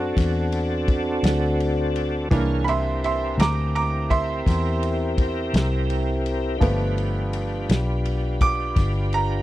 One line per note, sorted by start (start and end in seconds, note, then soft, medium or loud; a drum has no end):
0.00 0.14 F#2 medium
0.00 2.28 C4 medium
0.00 2.28 D4 medium
0.00 0.50 F#4 medium
0.00 2.29 F#4 medium
0.00 2.29 A4 medium
0.17 1.21 E2 medium
0.17 kick medium
0.17 snare soft
0.17 ride medium
0.52 ride medium
0.88 kick medium
0.88 ride medium
1.23 2.28 D2 medium
1.23 snare loud
1.23 ride medium
1.60 ride medium
1.96 ride medium
2.31 3.36 C2 medium
2.31 6.57 E3 soft
2.31 6.58 A#3 soft
2.31 6.58 D4 medium
2.31 2.69 G#4 medium
2.31 2.66 A#4 medium
2.31 2.69 C#5 medium
2.31 2.68 F5 medium
2.31 kick loud
2.31 ride medium
2.64 6.58 C4 medium
2.64 6.58 E4 medium
2.64 6.57 G4 medium
2.64 6.58 A#4 medium
2.64 2.69 B5 medium
2.64 ride medium
2.69 3.02 E5 medium
2.69 3.04 C6 medium
3.04 3.38 E5 medium
3.04 3.40 C6 medium
3.04 ride medium
3.38 4.43 D2 medium
3.38 3.73 A#5 medium
3.38 3.74 D6 medium
3.38 snare loud
3.38 ride medium
3.75 4.09 A#5 medium
3.75 4.11 D6 medium
3.75 ride medium
4.10 6.22 E5 medium
4.10 6.22 C6 medium
4.10 kick medium
4.10 ride medium
4.46 5.51 E2 medium
4.46 kick medium
4.46 snare soft
4.46 ride medium
4.83 ride medium
5.18 kick medium
5.18 ride medium
5.54 6.58 C2 medium
5.54 snare loud
5.54 ride medium
5.90 ride medium
6.26 ride medium
6.58 7.66 G1 medium
6.58 7.65 F3 soft
6.58 7.65 A3 soft
6.58 9.42 D4 medium
6.58 9.42 F4 medium
6.58 9.42 G4 medium
6.58 9.42 B4 medium
6.58 kick loud
6.58 ride medium
6.62 7.66 B3 medium
6.98 ride medium
7.33 ride medium
7.69 8.74 B1 medium
7.69 snare medium
7.69 ride medium
8.05 ride medium
8.41 9.11 D6 medium
8.41 kick medium
8.41 ride medium
8.76 9.42 G1 medium
8.76 kick medium
8.76 snare soft
8.76 ride medium
9.13 9.42 A#5 medium
9.13 ride medium